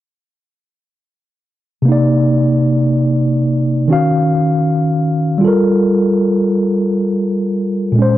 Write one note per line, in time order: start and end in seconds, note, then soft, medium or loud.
1.82 3.84 C3 medium
1.82 3.86 A#3 medium
1.89 3.87 D#4 medium
1.89 3.89 D5 medium
3.88 5.42 D#3 medium
3.88 5.42 C#4 medium
3.88 5.43 F#4 medium
3.93 5.44 F5 medium
5.38 7.91 G3 medium
5.38 7.92 F4 medium
5.45 7.94 A4 medium
5.45 7.95 A#4 medium
7.92 8.18 A#2 medium
7.92 8.18 G#3 medium
7.99 8.18 C#4 medium
7.99 8.18 C5 medium